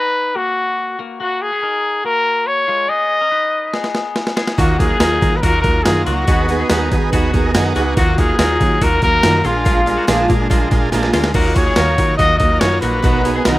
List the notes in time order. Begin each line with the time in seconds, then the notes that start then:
Already playing: D#4 B4 A#5
0.35 A#3 F#4
0.99 A#3 F#4
1.20 A#3 F#4
1.42 G#4
1.52 B3 G#4
1.63 D#4 A#4
2.05 A#3 F#4 A#4
2.47 C#5
2.68 G#3 F4
2.89 B3 G#4 D#5
3.21 C#4 A#4
3.31 D#4 B4
3.74 B3 G#4, snare
3.84 snare
3.95 snare
4.16 snare
4.27 snare
4.37 B3 G#4, snare
4.47 snare
4.57 D#2 D#3 F#3 A#3 D#4 F4 F#4 A#4, kick, open hi-hat
4.79 F#3 A#3 D#4 F4 F#4 G#4 A#4, kick, open hi-hat
4.90 B3 G#4
4.99 D#2 D#3 F#3 A#3 D#4 F4 F#4 A#4, snare, open hi-hat
5.21 D#3 F#3 A#3 D#4 F4 F#4 A#4, kick, open hi-hat
5.36 B4
5.41 D#2 D#3 F#3 A#3 D#4 F4 F#4 A#4, kick, open hi-hat
5.46 F4
5.61 D#2 D#4 F4 F#4 A#4, kick, open hi-hat
5.65 F#3 A#3
5.83 F#2 D#3 F#3 A#3 D#4 F4 F#4 G#4 A#4, snare, open hi-hat
5.87 F4
6.05 C#2 A#3 D#4 F4 F#4 A#4, open hi-hat
6.10 F#3
6.27 D#2 D#3 F#3 B3 D#4 F#4 G#4 B4, kick, open hi-hat
6.48 B3 D#4 F#4 G#4 B4, open hi-hat
6.60 B3 G#4
6.69 D#2 D#3 F#3 B3 D#4 F#4 G#4 A#4 B4, snare, open hi-hat
6.91 D#3 B3 D#4 F#4 G#4 B4, kick, open hi-hat
7.12 D#2 F#3 B3 D#4 F#4 G#4 B4, kick, open hi-hat
7.33 D#2 B3 D#4 F#4 G#4 A#4, kick, open hi-hat
7.54 F#2 D#3 F#3 B3 D#4 F#4 G#4 A#4 G#5, snare, open hi-hat
7.65 F#5
7.75 C#2 A#3 B3 D#4 F#4 G#4 B4, open hi-hat
7.96 D#2 D#3 F#3 A#3 D#4 F4 F#4 A#4, kick, open hi-hat
8.17 F#3 A#3 D#4 F4 F#4 G#4 A#4, kick, open hi-hat
8.29 B3 G#4
8.39 D#2 D#3 F#3 A#3 D#4 F4 F#4 A#4, snare, open hi-hat
8.60 D#3 F#3 A#3 D#4 F4 F#4 C#5, kick, open hi-hat
8.81 D#2 D#3 F#3 A#3 D#4 F4 F#4 A#4, kick, open hi-hat
9.02 D#2 F#3 A#3 D#4 F4 F#4 A#4, kick, open hi-hat
9.23 F#2 D#3 F#3 A#3 D#4 F4 F#4 A#4, snare, open hi-hat
9.44 A#1 G#3 D4 F4 G#4 A#4, open hi-hat
9.65 A#2 F3 G#3 D4 F4, kick, open hi-hat
9.86 G#3 D4 F4 G#4 A#4, open hi-hat
9.97 A#3 F#4
10.07 A#1 A#2 F3 G#3 D4 F4 G#4 A#4, snare, open hi-hat
10.28 A#2 G#3 D4 F4 G#4 A#4, kick, open hi-hat
10.49 A#1 F3 G#3 D4 F4 G#4 A#4, kick, open hi-hat
10.70 A#1 D4 F4 G#4 A#4, kick, snare, open hi-hat
10.74 G#3
10.92 A#1 A#2 F3 G#3 D4 F4 G#4 A#4, snare, open hi-hat
11.03 snare
11.11 D2 G#3 D4 F4 G#4 A#4, snare, open hi-hat
11.15 G#3 D4
11.24 snare
11.34 D#2 D#3 F#3 A#3 D#4 F4 F#4 A#4, kick, crash
11.55 F#3 A#3 D#4 F4 F#4 G#4 C#5, kick, open hi-hat
11.66 B3 G#4
11.75 D#2 D#3 F#3 A#3 D#4 F4 F#4 A#4, snare, open hi-hat
11.97 D#3 A#3 D#4 F4 F#4 A#4, kick, open hi-hat
12.17 D#2 D#3 F#3 A#3 D#4 F4 F#4 A#4 D#5, kick, open hi-hat
12.22 F4
12.38 D#2 A#3 D#4 F4 F#4 A#4 D#5, kick, open hi-hat
12.43 F#3
12.60 F#2 D#3 F#3 A#3 D#4 F4 F#4 A#4 C#5, snare, open hi-hat
12.80 A#1 F#3 A#3 D#4 F4 F#4 A#4 B4, open hi-hat
13.02 B1 B2 D#3 F#3 B3 D#4 F#4 A#4, kick, open hi-hat
13.23 F#3 B3 D#4 F#4 G#4 A#4, open hi-hat
13.36 B3 G#4
13.44 B1 B2 D#3 F#3 B3 D#4 F#4 A#4, snare, open hi-hat